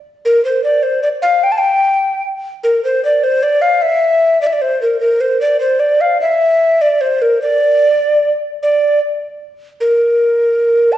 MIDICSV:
0, 0, Header, 1, 2, 480
1, 0, Start_track
1, 0, Tempo, 398142
1, 304, Time_signature, 3, 2, 24, 8
1, 13234, End_track
2, 0, Start_track
2, 0, Title_t, "Recorder"
2, 0, Program_c, 0, 74
2, 304, Note_on_c, 0, 70, 73
2, 528, Note_off_c, 0, 70, 0
2, 540, Note_on_c, 0, 72, 70
2, 760, Note_off_c, 0, 72, 0
2, 767, Note_on_c, 0, 74, 74
2, 999, Note_on_c, 0, 72, 69
2, 1017, Note_off_c, 0, 74, 0
2, 1230, Note_off_c, 0, 72, 0
2, 1238, Note_on_c, 0, 74, 81
2, 1310, Note_off_c, 0, 74, 0
2, 1473, Note_on_c, 0, 77, 88
2, 1730, Note_on_c, 0, 79, 90
2, 1748, Note_off_c, 0, 77, 0
2, 1831, Note_on_c, 0, 81, 76
2, 1849, Note_off_c, 0, 79, 0
2, 1907, Note_on_c, 0, 79, 87
2, 1925, Note_off_c, 0, 81, 0
2, 2705, Note_off_c, 0, 79, 0
2, 3178, Note_on_c, 0, 70, 83
2, 3407, Note_off_c, 0, 70, 0
2, 3429, Note_on_c, 0, 72, 85
2, 3653, Note_off_c, 0, 72, 0
2, 3671, Note_on_c, 0, 74, 91
2, 3901, Note_on_c, 0, 72, 85
2, 3920, Note_off_c, 0, 74, 0
2, 4136, Note_on_c, 0, 74, 95
2, 4154, Note_off_c, 0, 72, 0
2, 4360, Note_on_c, 0, 77, 89
2, 4378, Note_off_c, 0, 74, 0
2, 4604, Note_on_c, 0, 76, 103
2, 4622, Note_off_c, 0, 77, 0
2, 5316, Note_off_c, 0, 76, 0
2, 5323, Note_on_c, 0, 74, 86
2, 5385, Note_on_c, 0, 76, 69
2, 5403, Note_off_c, 0, 74, 0
2, 5458, Note_on_c, 0, 74, 83
2, 5477, Note_off_c, 0, 76, 0
2, 5566, Note_on_c, 0, 72, 89
2, 5584, Note_off_c, 0, 74, 0
2, 5802, Note_off_c, 0, 72, 0
2, 5809, Note_on_c, 0, 70, 74
2, 6022, Note_off_c, 0, 70, 0
2, 6030, Note_on_c, 0, 70, 87
2, 6278, Note_on_c, 0, 72, 92
2, 6296, Note_off_c, 0, 70, 0
2, 6515, Note_off_c, 0, 72, 0
2, 6522, Note_on_c, 0, 74, 85
2, 6747, Note_off_c, 0, 74, 0
2, 6754, Note_on_c, 0, 72, 82
2, 6989, Note_on_c, 0, 74, 90
2, 7007, Note_off_c, 0, 72, 0
2, 7244, Note_on_c, 0, 77, 81
2, 7263, Note_off_c, 0, 74, 0
2, 7479, Note_off_c, 0, 77, 0
2, 7487, Note_on_c, 0, 76, 93
2, 8216, Note_on_c, 0, 74, 81
2, 8234, Note_off_c, 0, 76, 0
2, 8452, Note_on_c, 0, 72, 83
2, 8470, Note_off_c, 0, 74, 0
2, 8702, Note_on_c, 0, 70, 73
2, 8720, Note_off_c, 0, 72, 0
2, 8935, Note_off_c, 0, 70, 0
2, 8943, Note_on_c, 0, 74, 92
2, 10014, Note_off_c, 0, 74, 0
2, 10404, Note_on_c, 0, 74, 81
2, 10843, Note_off_c, 0, 74, 0
2, 11822, Note_on_c, 0, 70, 86
2, 13169, Note_on_c, 0, 81, 69
2, 13187, Note_off_c, 0, 70, 0
2, 13234, Note_off_c, 0, 81, 0
2, 13234, End_track
0, 0, End_of_file